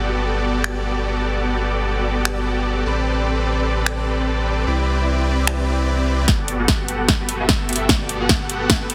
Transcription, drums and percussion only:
0.64 finger snap medium
2.25 finger snap medium
3.86 finger snap medium
5.47 finger snap loud
6.28 kick medium
6.28 snare soft
6.28 closed hi-hat medium
6.48 closed hi-hat medium
6.68 kick loud
6.68 snare soft
6.68 closed hi-hat medium
6.88 closed hi-hat medium
7.09 kick medium
7.09 snare medium
7.09 closed hi-hat medium
7.29 closed hi-hat medium
7.49 kick medium
7.49 snare medium
7.49 closed hi-hat medium
7.69 closed hi-hat soft
7.73 closed hi-hat medium
7.76 closed hi-hat medium
7.89 kick medium
7.89 snare medium
7.89 closed hi-hat medium
8.09 closed hi-hat medium
8.29 kick loud
8.29 snare medium
8.29 closed hi-hat medium
8.50 closed hi-hat medium
8.70 kick loud
8.70 snare medium
8.70 closed hi-hat medium
8.90 closed hi-hat medium

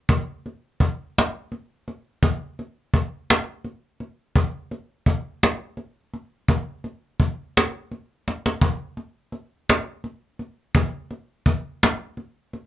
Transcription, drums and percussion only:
0.09 cajon bass loud
0.46 cajon slap soft
0.80 cajon bass medium
1.18 cajon slap medium
1.52 cajon slap soft
1.88 cajon slap soft
2.23 cajon bass loud
2.59 cajon slap soft
2.94 cajon bass medium
3.30 cajon slap loud
3.64 cajon slap soft
4.00 cajon slap soft
4.36 cajon bass medium
4.71 cajon slap soft
5.06 cajon bass medium
5.43 cajon slap medium
5.77 cajon slap soft
6.14 cajon slap soft
6.48 cajon bass medium
6.84 cajon slap soft
7.20 cajon bass medium
7.57 cajon slap loud
7.91 cajon slap soft
8.28 cajon slap soft
8.46 cajon slap medium
8.62 cajon bass loud
8.97 cajon slap soft
9.32 cajon slap soft
9.69 cajon slap loud
10.04 cajon slap soft
10.39 cajon slap soft
10.75 cajon bass loud
11.11 cajon slap soft
11.46 cajon bass medium
11.83 cajon slap loud
12.17 cajon slap soft
12.53 cajon slap soft

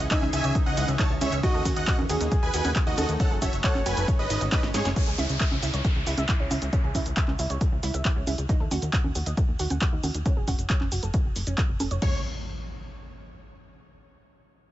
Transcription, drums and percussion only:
0.11 kick loud
0.11 clap loud
0.11 closed hi-hat medium
0.11 shaker soft
0.22 clap soft
0.22 high conga medium
0.33 open hi-hat loud
0.33 ride medium
0.33 shaker medium
0.44 closed hi-hat medium
0.44 shaker soft
0.55 kick loud
0.55 closed hi-hat medium
0.55 shaker soft
0.77 open hi-hat loud
0.77 ride medium
0.77 shaker medium
0.88 closed hi-hat medium
0.88 shaker soft
0.99 kick loud
0.99 clap loud
0.99 closed hi-hat medium
0.99 shaker soft
1.21 open hi-hat loud
1.21 ride medium
1.21 high conga medium
1.21 shaker medium
1.32 closed hi-hat medium
1.32 shaker soft
1.43 kick loud
1.43 closed hi-hat medium
1.43 shaker soft
1.65 kick medium
1.65 open hi-hat loud
1.65 ride medium
1.65 high conga medium
1.65 shaker medium
1.76 closed hi-hat medium
1.76 shaker soft
1.87 kick loud
1.87 clap loud
1.87 closed hi-hat medium
1.87 shaker soft
1.98 high conga medium
2.10 open hi-hat loud
2.10 ride medium
2.10 shaker medium
2.21 closed hi-hat medium
2.21 shaker soft
2.32 kick loud
2.32 closed hi-hat medium
2.32 shaker soft
2.54 open hi-hat loud
2.54 ride medium
2.54 shaker medium
2.65 closed hi-hat medium
2.65 high conga medium
2.65 shaker soft
2.76 kick loud
2.76 clap loud
2.76 closed hi-hat medium
2.76 shaker soft
2.98 open hi-hat loud
2.98 ride medium
2.98 high conga medium
2.98 shaker medium
3.09 closed hi-hat medium
3.09 shaker soft
3.20 kick loud
3.20 closed hi-hat medium
3.20 shaker soft
3.42 kick medium
3.42 open hi-hat loud
3.42 ride medium
3.42 high conga medium
3.42 shaker medium
3.53 closed hi-hat medium
3.53 shaker soft
3.64 kick loud
3.64 clap loud
3.64 closed hi-hat medium
3.64 shaker soft
3.75 clap soft
3.75 high conga medium
3.86 open hi-hat loud
3.86 ride medium
3.86 shaker medium
3.97 closed hi-hat medium
3.97 shaker soft
4.08 kick loud
4.08 closed hi-hat medium
4.08 shaker soft
4.30 open hi-hat loud
4.30 ride medium
4.30 shaker medium
4.41 closed hi-hat medium
4.41 shaker soft
4.52 kick loud
4.52 snare medium
4.52 clap loud
4.52 closed hi-hat medium
4.52 shaker soft
4.63 snare medium
4.74 snare medium
4.74 open hi-hat loud
4.74 ride medium
4.74 high conga medium
4.74 shaker medium
4.85 snare medium
4.85 closed hi-hat medium
4.85 high conga medium
4.85 shaker soft
4.96 kick loud
4.96 closed hi-hat medium
4.96 shaker soft
5.18 open hi-hat loud
5.18 high conga medium
5.18 shaker medium
5.29 closed hi-hat medium
5.29 shaker soft
5.40 kick loud
5.40 clap loud
5.40 closed hi-hat medium
5.40 shaker soft
5.51 high conga medium
5.63 open hi-hat loud
5.63 shaker medium
5.74 closed hi-hat medium
5.74 shaker soft
5.85 kick loud
5.85 closed hi-hat medium
5.85 shaker soft
6.07 open hi-hat loud
6.07 shaker medium
6.18 closed hi-hat medium
6.18 high conga medium
6.18 shaker soft
6.29 kick loud
6.29 clap loud
6.29 closed hi-hat medium
6.29 shaker soft
6.51 open hi-hat loud
6.51 high conga medium
6.51 shaker medium
6.62 closed hi-hat medium
6.62 shaker soft
6.73 kick loud
6.73 closed hi-hat medium
6.73 shaker soft
6.95 kick medium
6.95 open hi-hat loud
6.95 high conga medium
6.95 shaker medium
7.06 closed hi-hat medium
7.06 shaker soft
7.17 kick loud
7.17 clap loud
7.17 closed hi-hat medium
7.17 shaker soft
7.28 clap soft
7.28 high conga medium
7.39 open hi-hat loud
7.39 shaker medium
7.50 closed hi-hat medium
7.50 shaker soft
7.61 kick loud
7.61 closed hi-hat medium
7.61 shaker soft
7.83 open hi-hat loud
7.83 shaker medium
7.94 closed hi-hat medium
7.94 shaker soft
8.05 kick loud
8.05 clap loud
8.05 closed hi-hat medium
8.05 shaker soft
8.27 open hi-hat loud
8.27 high conga medium
8.27 shaker medium
8.38 closed hi-hat medium
8.38 shaker soft
8.49 kick loud
8.49 closed hi-hat medium
8.49 shaker soft
8.71 open hi-hat loud
8.71 high conga medium
8.71 shaker medium
8.82 closed hi-hat medium
8.82 shaker soft
8.93 kick loud
8.93 clap loud
8.93 closed hi-hat medium
8.93 shaker soft
9.04 high conga medium
9.15 open hi-hat loud
9.15 shaker medium
9.26 closed hi-hat medium
9.26 shaker soft
9.37 kick loud
9.37 closed hi-hat medium
9.37 shaker soft
9.59 open hi-hat loud
9.59 shaker medium
9.70 closed hi-hat medium
9.70 high conga medium
9.70 shaker soft
9.81 kick loud
9.81 clap loud
9.81 closed hi-hat medium
9.81 shaker soft
10.03 open hi-hat loud
10.03 high conga medium
10.03 shaker medium
10.14 closed hi-hat medium
10.14 shaker soft
10.26 kick loud
10.26 closed hi-hat medium
10.26 shaker soft
10.48 kick medium
10.48 open hi-hat loud
10.48 high conga medium
10.48 shaker medium
10.59 closed hi-hat medium
10.59 shaker soft
10.70 kick loud
10.70 clap loud
10.70 closed hi-hat medium
10.70 shaker soft
10.81 clap soft
10.81 high conga medium
10.92 open hi-hat loud
10.92 shaker medium
11.03 closed hi-hat medium
11.03 shaker soft
11.14 kick loud
11.14 closed hi-hat medium
11.14 shaker soft
11.36 open hi-hat loud
11.36 shaker medium
11.47 closed hi-hat medium
11.47 shaker soft
11.58 kick loud
11.58 clap loud
11.58 closed hi-hat medium
11.58 shaker soft
11.80 open hi-hat loud
11.80 high conga medium
11.80 shaker medium
11.91 closed hi-hat medium
11.91 shaker soft
12.02 kick loud
12.02 crash medium

